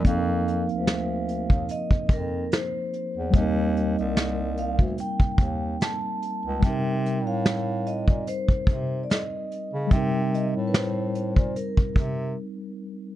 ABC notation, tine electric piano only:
X:1
M:4/4
L:1/8
Q:"Swing 16ths" 1/4=73
K:Cdor
V:1 name="Tine electric piano"
[F,B,CEAB]8 | [G,B,CEB]8 | [G,CEB]8 | [G,CEB]8 |]